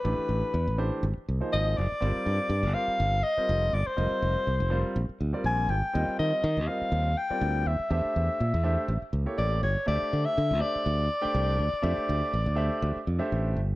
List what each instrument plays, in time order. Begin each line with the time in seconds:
Already playing: soprano saxophone B4
0.04 fingered electric bass A1, grand piano E3 A3 D4 G4 B4
0.19 muted fingered electric bass stroke
0.29 fingered electric bass A1
0.54 fingered electric bass E2
0.67 fingered electric bass A1
0.78 grand piano E3 A3 D4 G4 C5
1.03 fingered electric bass G#1
1.17 muted fingered electric bass stroke
1.28 fingered electric bass C2
1.40 grand piano F3 A#3 D#4 G#4 C5
1.53 fingered electric bass G#1, soprano saxophone D#5
1.77 fingered electric bass F#1, soprano saxophone D5
1.92 muted fingered electric bass stroke
2.01 fingered electric bass G1, grand piano G3 C4 F4 A#4 D5
2.26 fingered electric bass G2
2.50 fingered electric bass G2
2.63 fingered electric bass G1
2.74 grand piano G3 C4 F4 A#4 C5, soprano saxophone F5
2.88 muted fingered electric bass stroke
3.00 fingered electric bass G1
3.23 soprano saxophone D#5
3.37 grand piano G3 C4 F4 A#4 C5, muted fingered electric bass stroke
3.49 fingered electric bass F1
3.73 fingered electric bass G1, soprano saxophone D5
3.87 soprano saxophone C5, muted fingered electric bass stroke
3.97 fingered electric bass F1, grand piano G3 C4 F4 A#4 D#5
4.11 muted fingered electric bass stroke
4.22 fingered electric bass F1
4.47 fingered electric bass C2
4.60 fingered electric bass F1
4.70 grand piano G3 C4 F4 A#4 C5
4.96 fingered electric bass A#1
5.09 muted fingered electric bass stroke
5.21 fingered electric bass D2
5.33 grand piano G3 C4 F4 A#4 D5
5.44 fingered electric bass A#1, soprano saxophone G#5
5.69 fingered electric bass G#1, soprano saxophone G5
5.84 muted fingered electric bass stroke
5.93 fingered electric bass D#2, grand piano G3 C4 F4 A#4 D#5
6.08 muted fingered electric bass stroke
6.19 fingered electric bass D#3, soprano saxophone D#5
6.44 fingered electric bass D#3
6.57 fingered electric bass D#2
6.67 grand piano G3 C4 F4 A#4 D#5, soprano saxophone F5
6.81 muted fingered electric bass stroke
6.92 fingered electric bass D#2
7.17 soprano saxophone G5
7.30 grand piano G3 C4 F4 A#4 D5, muted fingered electric bass stroke
7.41 fingered electric bass D2
7.66 fingered electric bass D#2, soprano saxophone E5
7.79 muted fingered electric bass stroke
7.90 fingered electric bass E2, grand piano A3 D4 G4 C5 E5
8.05 muted fingered electric bass stroke
8.16 fingered electric bass E2
8.40 fingered electric bass A#2
8.54 fingered electric bass E2
8.63 grand piano A3 D4 G4 C5 E5
8.88 fingered electric bass A1
9.02 muted fingered electric bass stroke
9.13 fingered electric bass C#2
9.26 grand piano A#3 E4 G4 A4 C#5
9.38 fingered electric bass A1, soprano saxophone D5
9.63 fingered electric bass G1, soprano saxophone C#5
9.76 muted fingered electric bass stroke
9.86 fingered electric bass D2, grand piano A3 D4 G4 C5 E5, soprano saxophone D5
10.13 fingered electric bass D3
10.25 soprano saxophone E5
10.38 fingered electric bass D3
10.51 fingered electric bass D2
10.59 grand piano A3 D4 G4 C5 E5, soprano saxophone D5
10.76 muted fingered electric bass stroke
10.86 fingered electric bass D2
11.21 grand piano A3 D4 G4 C5 G5, muted fingered electric bass stroke
11.34 fingered electric bass C2
11.59 fingered electric bass D2
11.73 muted fingered electric bass stroke
11.82 fingered electric bass F2, grand piano A3 D4 G4 C5 E5
11.98 muted fingered electric bass stroke
12.09 fingered electric bass D2
12.33 fingered electric bass A1
12.46 fingered electric bass D2
12.55 grand piano A3 D4 G4 C5 E5
12.82 fingered electric bass D2
12.96 muted fingered electric bass stroke
13.07 fingered electric bass F2
13.19 grand piano A3 D4 G4 C5 E5
13.32 fingered electric bass A1
13.56 fingered electric bass G1